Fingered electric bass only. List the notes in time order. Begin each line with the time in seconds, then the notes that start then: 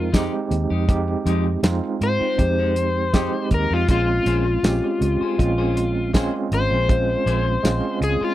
Already playing: F2
0.51 D#2
0.71 F2
1.26 F2
1.63 F2
2.01 G#2
2.20 muted fingered electric bass stroke
2.38 F2
3.51 D#2
3.71 F2
3.88 A#1
4.26 A#1
4.63 A#1
5.01 C#2
5.21 muted fingered electric bass stroke
5.39 A#1
6.51 G#1
6.71 A#1
7.26 A#1
7.64 A#1
8.01 C#2
8.21 muted fingered electric bass stroke